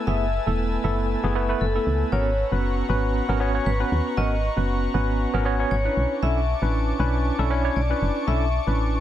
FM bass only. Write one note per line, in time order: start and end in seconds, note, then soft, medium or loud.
0.07 0.39 F#1 loud
0.47 0.78 E1 medium
0.84 1.16 F#1 loud
1.24 1.54 F#1 medium
1.61 1.79 F#1 medium
1.87 2.04 C#2 medium
2.12 2.44 G#1 loud
2.52 2.83 F#1 medium
2.89 3.21 G#1 loud
3.29 3.60 G#1 medium
3.66 3.84 G#1 loud
3.92 4.01 D#2 loud
4.17 4.49 G#1 loud
4.57 4.88 F#1 medium
4.94 5.26 G#1 loud
5.34 5.65 G#1 loud
5.71 5.89 G#1 medium
5.97 6.06 B1 loud
6.22 6.54 B1 loud
6.62 6.93 A1 medium
6.99 7.31 B1 loud
7.39 7.70 B1 loud
7.76 7.94 B1 loud
8.02 8.11 F#1 loud
8.28 8.59 B1 loud
8.67 8.98 A1 medium